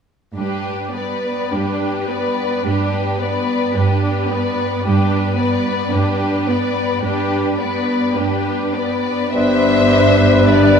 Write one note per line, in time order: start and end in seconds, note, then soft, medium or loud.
0.37 1.37 G2 soft
0.37 0.91 D4 soft
0.37 0.91 G4 soft
0.37 0.91 B4 soft
0.95 1.52 B3 soft
0.95 1.53 B4 soft
0.95 1.53 D5 soft
1.52 2.50 G2 soft
1.52 2.09 D4 soft
1.52 2.09 G4 soft
1.52 2.10 B4 soft
2.10 2.65 B3 soft
2.10 2.65 B4 soft
2.10 2.66 D5 soft
2.65 3.61 G2 soft
2.65 3.17 D4 soft
2.65 3.17 G4 soft
2.65 3.18 B4 soft
3.21 3.76 B3 soft
3.21 3.76 B4 soft
3.21 3.76 D5 soft
3.76 4.71 G2 soft
3.76 4.31 D4 soft
3.76 4.31 G4 soft
3.76 4.31 B4 soft
4.30 4.85 B3 soft
4.30 4.86 B4 soft
4.30 4.85 D5 soft
4.84 5.79 G2 soft
4.84 5.36 D4 soft
4.84 5.36 G4 soft
4.84 5.35 B4 soft
5.38 5.93 B3 soft
5.38 5.93 B4 soft
5.38 5.93 D5 soft
5.92 6.88 G2 soft
5.92 6.48 D4 soft
5.92 6.48 G4 soft
5.92 6.48 B4 soft
6.48 7.04 B3 soft
6.48 7.04 B4 soft
6.48 7.04 D5 soft
7.02 8.01 G2 soft
7.02 7.56 D4 soft
7.02 7.55 G4 soft
7.02 7.56 B4 soft
7.59 8.17 B3 soft
7.59 8.17 B4 soft
7.59 8.16 D5 soft
8.15 9.20 G2 soft
8.15 8.76 D4 soft
8.15 8.76 G4 soft
8.15 8.75 B4 soft
8.73 9.35 B3 soft
8.73 9.36 B4 soft
8.73 9.34 D5 soft
9.33 10.80 G1 soft
9.33 10.80 G2 soft
9.33 10.80 G3 soft
9.33 10.80 B3 soft
9.33 10.47 B3 soft
9.33 10.80 D4 soft
9.33 10.47 D4 soft
9.33 10.80 B4 soft
9.33 10.47 C5 soft
9.33 10.46 E5 medium
9.33 10.53 E5 soft
10.49 10.80 B3 soft
10.49 10.80 D4 soft
10.49 10.80 B4 soft
10.49 10.80 D5 soft